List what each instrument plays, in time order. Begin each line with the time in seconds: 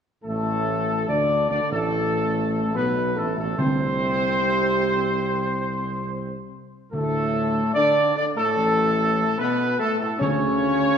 0.24 tuba A1, trombone section A2, french horn section A3, trumpet section A4
1.08 tuba D2, trombone section D3, french horn section D4, trumpet section D5
1.50 tuba D2, trombone section D3, french horn section D4, trumpet section D5
1.69 tuba A1, trombone section A2, french horn section A3, trumpet section A4
2.74 tuba B1, trombone section B2, french horn section B3, trumpet section B4
3.16 tuba A1, trombone section A2, french horn section A3, trumpet section A4
3.36 tuba A1, trombone section A2, french horn section A3, trumpet section A4
3.58 tuba C2, trombone section C3, timpani D3, french horn section C4, trumpet section C5
6.92 tuba D2, trombone section A2, timpani D3, french horn section A3, trumpet section A4
7.74 trombone section D3, french horn section D4, trumpet section D5
8.15 trombone section D3, french horn section D4, trumpet section D5
8.36 trombone section A2, french horn section A3, trumpet section A4
8.57 tuba A1
9.38 trombone section B2, french horn section B3, trumpet section B4
9.79 trombone section A2, french horn section A3, trumpet section A4
10.00 trombone section A2, french horn section A3, trumpet section A4
10.19 tuba D2, trombone section C#3, timpani D3, french horn section C#4, trumpet section C#5